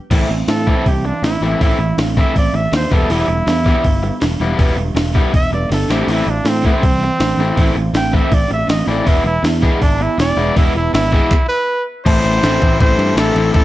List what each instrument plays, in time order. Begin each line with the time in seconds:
0.11 picked electric bass A1, overdriven electric guitar E3 A3 C4 E4, kick, open hi-hat, crash
0.29 picked electric bass A1, overdriven electric guitar E3 C4, muted overdriven electric guitar stroke
0.48 picked electric bass A2, overdriven electric guitar E3 C4, trumpet A4, muted overdriven electric guitar stroke, snare, open hi-hat
0.67 overdriven electric guitar E3 A3 C4 E4, kick
0.86 picked electric bass C2, overdriven electric guitar E3 C4, trumpet G4, muted overdriven electric guitar stroke, kick, open hi-hat
1.05 overdriven electric guitar E3 C4, trumpet D4, muted overdriven electric guitar stroke
1.23 picked electric bass A1, overdriven electric guitar E3 C4, trumpet E4, muted overdriven electric guitar stroke, snare, open hi-hat
1.41 picked electric bass A1, overdriven electric guitar E3 A3 C4 E4
1.45 trumpet E4
1.60 picked electric bass A1, overdriven electric guitar E3 A3 C4 E4, trumpet E4, kick, open hi-hat
1.78 picked electric bass A1, overdriven electric guitar E3 C4, muted overdriven electric guitar stroke
1.98 picked electric bass A1, overdriven electric guitar E3 C4, muted overdriven electric guitar stroke, snare, open hi-hat
2.17 overdriven electric guitar E3 A3 C4 E4, trumpet E5, kick, snare
2.35 picked electric bass A1, overdriven electric guitar E3 C4, trumpet D5, muted overdriven electric guitar stroke, kick, open hi-hat
2.53 picked electric bass A1, overdriven electric guitar E3 C4, trumpet E5, muted overdriven electric guitar stroke
2.72 picked electric bass D#2, overdriven electric guitar E3 C4, trumpet C5, muted overdriven electric guitar stroke, snare, open hi-hat
2.90 picked electric bass E1, overdriven electric guitar E3 G3 B3 E4, trumpet A4, kick
3.09 picked electric bass E1, overdriven electric guitar E3 G3 B3 E4, trumpet E4, open hi-hat
3.28 picked electric bass E1, overdriven electric guitar G3 B3, muted overdriven electric guitar stroke
3.46 picked electric bass E2, overdriven electric guitar G3 B3, muted overdriven electric guitar stroke, snare, open hi-hat
3.64 overdriven electric guitar E3 G3 B3 E4, kick, snare
3.84 picked electric bass G1, overdriven electric guitar G3 B3, muted overdriven electric guitar stroke, kick, open hi-hat
4.03 overdriven electric guitar G3 B3, muted overdriven electric guitar stroke
4.20 picked electric bass E1, overdriven electric guitar G3 B3, muted overdriven electric guitar stroke, snare, open hi-hat
4.40 picked electric bass E1, overdriven electric guitar E3 G3 B3 E4
4.57 picked electric bass E1, overdriven electric guitar E3 G3 B3 E4, kick, open hi-hat
4.76 picked electric bass E1, overdriven electric guitar G3 B3, muted overdriven electric guitar stroke
4.95 picked electric bass E1, overdriven electric guitar G3 B3, muted overdriven electric guitar stroke, snare, open hi-hat
5.13 overdriven electric guitar E3 G3 B3 E4, kick
5.31 picked electric bass E1, overdriven electric guitar G3 B3, trumpet E5, muted overdriven electric guitar stroke, kick, open hi-hat
5.50 picked electric bass E1, overdriven electric guitar G3 B3, trumpet D5, muted overdriven electric guitar stroke
5.69 picked electric bass G1, overdriven electric guitar G3 B3, trumpet A4, muted overdriven electric guitar stroke, snare, open hi-hat
5.88 picked electric bass A1, overdriven electric guitar E3 A3 C4 E4, trumpet G4, snare
6.06 picked electric bass A1, overdriven electric guitar E3 A3 C4 E4, open hi-hat
6.10 overdriven electric guitar C4 E4, trumpet E4
6.26 picked electric bass A1, overdriven electric guitar E3 C4, muted overdriven electric guitar stroke
6.30 trumpet D4
6.44 picked electric bass A2, overdriven electric guitar E3 C4, muted overdriven electric guitar stroke, snare, open hi-hat
6.48 trumpet C4
6.62 overdriven electric guitar E3 C4 E4, kick
6.66 overdriven electric guitar E3 A3 C4, trumpet C4
6.81 picked electric bass C2, overdriven electric guitar E3 C4, muted overdriven electric guitar stroke, kick, open hi-hat
7.00 overdriven electric guitar E3 C4, muted overdriven electric guitar stroke
7.19 picked electric bass A1, overdriven electric guitar E3 C4, muted overdriven electric guitar stroke, snare, open hi-hat
7.37 picked electric bass A1, overdriven electric guitar E3 A3 C4 E4
7.56 picked electric bass A1, overdriven electric guitar E3 A3 C4 E4, kick, open hi-hat
7.75 picked electric bass A1, overdriven electric guitar E3 C4, muted overdriven electric guitar stroke
7.93 picked electric bass A1, overdriven electric guitar E3 C4, trumpet G5, muted overdriven electric guitar stroke, snare, open hi-hat
8.12 overdriven electric guitar E3 A3 C4 E4, trumpet E5, kick
8.31 picked electric bass A1, overdriven electric guitar E3 C4, trumpet D5, muted overdriven electric guitar stroke, kick, open hi-hat
8.48 picked electric bass A1, overdriven electric guitar E3 C4, muted overdriven electric guitar stroke
8.53 trumpet E5
8.67 picked electric bass A1, overdriven electric guitar E3 C4, trumpet D#5, muted overdriven electric guitar stroke, snare, open hi-hat
8.86 picked electric bass A1, overdriven electric guitar E3 A3 C4 E4, trumpet D5
9.04 picked electric bass E1, overdriven electric guitar E3 G#3 B3 E4 G#4, trumpet E4, kick, open hi-hat
9.24 picked electric bass E1, overdriven electric guitar B3 E4, trumpet E4, muted overdriven electric guitar stroke
9.42 picked electric bass E2, overdriven electric guitar B3 E4, muted overdriven electric guitar stroke, snare, open hi-hat
9.61 overdriven electric guitar E3 G#3 B3 E4 G#4, kick, snare
9.79 picked electric bass G#1, overdriven electric guitar B3 E4, trumpet D4, muted overdriven electric guitar stroke, kick, open hi-hat
9.98 overdriven electric guitar B3 E4, muted overdriven electric guitar stroke
10.02 trumpet E4
10.18 picked electric bass E1, overdriven electric guitar B3 E4, trumpet D5, muted overdriven electric guitar stroke, snare, open hi-hat
10.36 picked electric bass E1, overdriven electric guitar E3 G#3 B3 E4
10.55 picked electric bass E1, overdriven electric guitar E3 G#3 B3 E4 G#4, trumpet E4, kick, open hi-hat
10.75 picked electric bass E1, overdriven electric guitar B3 E4, trumpet E4, muted overdriven electric guitar stroke
10.93 picked electric bass G#1, overdriven electric guitar B3 E4, trumpet E4, muted overdriven electric guitar stroke, snare, open hi-hat
11.12 overdriven electric guitar E3 G#3 B3 E4 G#4, kick
11.31 kick, clap
11.48 trumpet B4
12.05 picked electric bass A1, overdriven electric guitar A2 E3 A3 C4 E4, transistor combo organ A4 C5 E5 C6, trumpet C5, glockenspiel A5, kick, crash
12.24 picked electric bass A1, crash
12.43 picked electric bass A1, overdriven electric guitar A2 E3 A3 C4 E4, snare, crash
12.62 picked electric bass A1, overdriven electric guitar A2 E3 A3 C4 E4, kick, crash
12.80 picked electric bass A1, overdriven electric guitar A2 E3 A3 C4 E4, trumpet C5, kick, crash
12.98 picked electric bass G2, crash
13.15 picked electric bass A1, overdriven electric guitar A2 E3 A3 C4 E4, trumpet A4, snare, crash
13.35 picked electric bass A1, overdriven electric guitar A2 E3 A3 C4 E4, crash
13.54 picked electric bass A1, overdriven electric guitar A2 E3 A3 C4 E4, trumpet A4, kick, crash